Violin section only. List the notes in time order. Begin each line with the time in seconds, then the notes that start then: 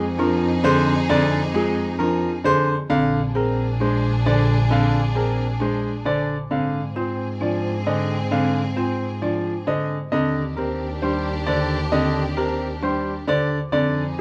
Already playing: D#4 G#4
2.90 D4 G#4
6.51 C4 G#4
10.12 D4 G4
13.73 D#4 G#4